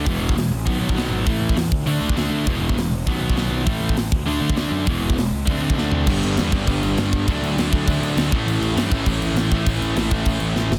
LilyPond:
<<
  \new Staff \with { instrumentName = "Overdriven electric guitar" } { \clef bass \time 4/4 \key d \lydian \tempo 4 = 200 <e gis b>4 <e gis>8 r8 <b, dis fis>4 <b, dis fis>4 | <a, e a>4 <a, e>8 r8 <d a d'>4 <d a d'>4 | <e gis b>4 <e gis>8 r8 <b, dis fis>4 <b, dis fis>4 | <a, e a>4 <a, e>8 r8 <d a d'>4 <d a d'>4 |
<e gis b>4 <e gis>8 r8 <d a c'>4 <d a c'>4 | \key a \mixolydian <g, d g b d'>2 <g, d g b d'>2 | <d fis a d'>2 <d fis a d'>4. <a, e a cis' e'>8~ | <a, e a cis' e'>4. <a, e a cis' e'>2 <a, e a cis' e'>8~ |
<a, e a cis' e'>4. <a, e a cis' e'>2 r8 | }
  \new Staff \with { instrumentName = "Distorted electric guitar" } { \clef bass \time 4/4 \key d \lydian <e, b, e>4 <e, b,>8 r8 <b, fis b>4 <b, fis b>4 | <a, e a>4 <a, e>8 r8 <d a d'>4 <d a d'>4 | <e, b, e>4 <e, b,>8 r8 <b, fis b>4 <b, fis b>4 | <a, e a>4 <a, e>8 r8 <d a d'>4 <d a d'>4 |
<e, b, e>4 <e, b,>8 r8 <d a d'>4 <d a d'>4 | \key a \mixolydian <g, d g>4. <g, d g>2~ <g, d g>8 | <d a d'>4. <d a d'>2 <a, e a>8~ | <a, e a>4 <a, e a>2~ <a, e a>8 <a, e a>8~ |
<a, e a>4 <a, e a>2~ <a, e a>8 r8 | }
  \new Staff \with { instrumentName = "Picked electric bass" } { \clef bass \time 4/4 \key d \lydian e,,8 e,,8 e,,8 a,,8 b,,8 b,,8 b,,8 gis,,8 | a,,8 a,,8 e,8 d,8 d,8 d,8 d,8 d,8 | e,,8 e,,8 e,,8 e,,8 b,,8 b,,8 b,,8 b,,8 | a,,8 a,,8 a,,8 d,8 d,8 d,8 d,8 fis,8 |
e,,8 e,,8 e,,8 cis,8 d,8 d,8 d,8 d,8 | \key a \mixolydian g,,8 g,,8 e,8 g,,8 g,,8 g,,8 g,,4 | d,8 d,8 d,8 d,8 d,8 d,8 d,8 a,,8 | a,,8 a,,8 g,8 a,,8 a,,8 a,,8 a,,4 |
a,,8 a,,8 a,,8 a,,8 a,,8 a,,8 a,,8 fis,,8 | }
  \new DrumStaff \with { instrumentName = "Drums" } \drummode { \time 4/4 <hho bd>8. bd16 <hho sn>4 <hho bd>8. bd16 <hho sn>4 | <hho bd>8. bd16 <hho sn>8 bd8 hho8. bd16 <hho sn>4 | <hho bd>8. bd16 <hho sn>4 <hho bd>8. bd16 <hho sn>4 | <hho bd>8. bd16 <hho sn>8 bd8 hho8. bd16 <hho sn>4 |
<hho bd>8. bd16 <hho sn>4 bd8. bd16 sn8 tomfh8 | <cymc bd>8 cymc8 <cymc sn>8 <cymc bd>8 <cymc bd>8 cymc8 <cymc sn>8 <cymc bd>8 | <cymc bd>8 cymc8 <cymc sn>8 <cymc bd>8 <cymc bd>8 cymc8 <cymc sn>8 <cymc bd>8 | cymc8 cymc8 <cymc sn>8 <cymc bd>8 <cymc bd>8 cymc8 <cymc sn>8 <cymc bd>8 |
<cymc bd>8 cymc8 <cymc sn>8 <cymc bd>8 <cymc bd>8 cymc8 sn8 sn8 | }
>>